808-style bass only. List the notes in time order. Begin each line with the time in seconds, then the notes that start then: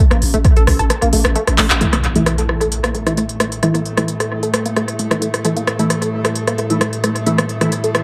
0.11 A1
0.22 A1
0.34 A1
0.57 A1
0.67 A1
0.79 A1
1.02 A1
1.13 A1
1.25 A1
1.47 A1
1.58 A1
1.70 A1